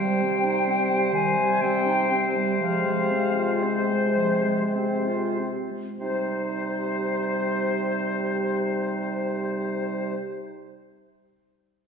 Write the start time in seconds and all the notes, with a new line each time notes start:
Already playing: C3 G3 C5 G5
0.00 G3
0.22 C4
0.44 D#4
0.67 C4
0.90 G3
1.12 D#3 G#5
1.37 G3
1.61 C4 G5
1.86 D#4
2.11 C4
2.36 G3
2.61 F3 G#3 F5
2.86 G#3
3.11 C4
3.36 F4
3.63 C4 C5
3.89 G#3
4.17 F3
4.45 G#3
4.75 C4
5.06 F4
5.39 C4
5.71 G#3
5.99 C3 G3 D#4 C5